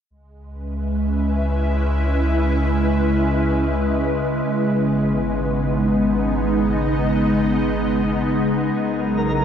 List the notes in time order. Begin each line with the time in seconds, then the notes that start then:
0.10 C#2 C#3 G#3
0.35 B4
0.53 C#4
0.58 E5
0.84 E4
4.47 G#1
4.60 B3
5.24 D#4
6.08 D#5
8.74 A#1 F#3 A#4 A#5
9.01 E4
9.08 C#4